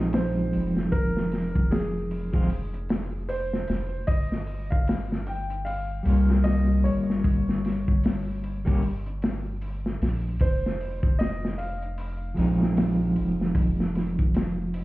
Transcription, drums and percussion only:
0.13 snare, open hi-hat, maracas
0.53 open hi-hat
0.77 snare
0.92 kick, open hi-hat
1.17 snare
1.32 snare, open hi-hat
1.55 kick
1.72 snare, open hi-hat, maracas
2.11 open hi-hat
2.34 kick
2.50 open hi-hat
2.74 closed hi-hat
2.89 snare, open hi-hat
3.29 open hi-hat, maracas
3.53 snare
3.68 snare, open hi-hat
4.07 kick, open hi-hat
4.32 snare
4.47 open hi-hat
4.72 kick
4.87 snare, open hi-hat, maracas
5.12 snare
5.26 open hi-hat
5.50 closed hi-hat
5.66 open hi-hat
6.06 open hi-hat
6.30 snare
6.44 snare, open hi-hat, maracas
6.86 open hi-hat
7.10 snare
7.24 kick, open hi-hat
7.49 snare
7.65 snare, open hi-hat
7.88 kick
8.03 snare, open hi-hat, maracas
8.44 open hi-hat
8.67 kick
8.82 open hi-hat
9.06 closed hi-hat
9.22 snare, open hi-hat
9.61 open hi-hat, maracas
9.86 snare
10.02 snare, open hi-hat
10.40 kick, open hi-hat
10.66 snare
10.81 open hi-hat
11.03 kick
11.20 snare, open hi-hat, maracas
11.45 snare
11.59 open hi-hat
11.82 closed hi-hat
11.98 open hi-hat
12.37 open hi-hat
12.62 snare
12.77 snare, open hi-hat, maracas
13.16 open hi-hat
13.41 snare
13.55 kick, open hi-hat
13.80 snare
13.95 snare, open hi-hat
14.19 kick
14.34 snare, open hi-hat, maracas
14.74 open hi-hat

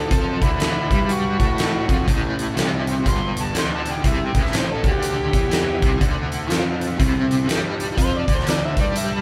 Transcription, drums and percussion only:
0.11 kick, closed hi-hat
0.42 kick, closed hi-hat
0.60 snare, closed hi-hat
0.91 kick, closed hi-hat
1.09 closed hi-hat
1.40 kick, closed hi-hat
1.58 snare, closed hi-hat
1.89 kick, closed hi-hat
2.08 kick, closed hi-hat
2.39 closed hi-hat
2.57 snare, closed hi-hat
2.87 closed hi-hat
3.06 kick, closed hi-hat
3.37 closed hi-hat
3.55 snare, closed hi-hat
3.86 closed hi-hat
4.04 kick, closed hi-hat
4.35 kick, closed hi-hat
4.46 snare
4.53 snare, closed hi-hat
4.84 kick, closed hi-hat
5.03 closed hi-hat
5.33 kick, closed hi-hat
5.51 snare, closed hi-hat
5.82 kick, closed hi-hat
6.01 kick, closed hi-hat
6.32 closed hi-hat
6.50 snare, closed hi-hat
6.81 closed hi-hat
7.00 kick, closed hi-hat
7.31 closed hi-hat
7.49 snare, closed hi-hat
7.80 closed hi-hat
7.98 kick, closed hi-hat
8.28 kick, closed hi-hat
8.40 snare
8.47 snare, closed hi-hat
8.77 kick, closed hi-hat
8.96 closed hi-hat

